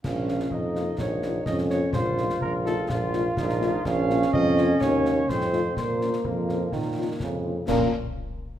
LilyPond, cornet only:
\new Staff \with { instrumentName = "Cornet" } { \time 2/4 \key bes \minor \tempo 4 = 126 f''4 ees''4 | des''4 ees''8 des''8 | c''4 bes'8 a'8 | f'2 |
f''4 ees''4 | des''4 c''4 | c''4 bes'4~ | bes'4. r8 |
bes'8 r4. | }